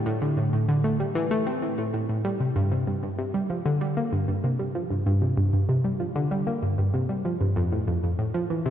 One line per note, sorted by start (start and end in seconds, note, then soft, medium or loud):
0.06 0.21 A2 loud
0.22 0.37 D3 medium
0.37 0.49 A2 medium
0.53 0.64 A2 medium
0.69 0.80 D3 medium
0.84 0.95 A3 medium
1.00 1.11 G3 medium
1.15 1.27 E3 loud
1.31 1.46 A3 medium
1.47 1.62 C4 medium
1.62 1.74 A2 medium
1.78 1.93 A2 medium
1.94 2.00 A2 medium
2.09 2.24 A2 medium
2.25 2.36 G3 medium
2.40 2.47 C3 medium
2.56 2.71 G2 loud
2.72 2.87 C3 medium
2.87 2.99 G2 medium
3.03 3.14 G2 medium
3.19 3.30 C3 medium
3.34 3.46 G3 medium
3.50 3.61 F3 medium
3.66 3.77 D3 loud
3.81 3.96 G3 medium
3.97 4.12 A#3 medium
4.13 4.24 G2 medium
4.28 4.39 G2 medium
4.44 4.55 C3 medium
4.59 4.71 G3 medium
4.75 4.86 F3 medium
4.90 5.05 G2 medium
5.06 5.21 G2 loud
5.22 5.37 C3 medium
5.37 5.49 G2 medium
5.53 5.64 G2 medium
5.69 5.80 C3 medium
5.84 5.96 G3 medium
6.00 6.11 F3 medium
6.16 6.27 D3 loud
6.31 6.46 G3 medium
6.47 6.62 A#3 medium
6.62 6.74 G2 medium
6.78 6.89 G2 medium
6.94 7.05 C3 medium
7.09 7.21 G3 medium
7.25 7.36 F3 medium
7.41 7.55 G2 medium
7.56 7.71 F2 loud
7.72 7.87 A2 medium
7.88 7.99 F2 medium
8.03 8.14 F2 medium
8.19 8.30 A2 medium
8.34 8.46 F3 medium
8.50 8.61 E3 medium
8.66 8.70 C3 loud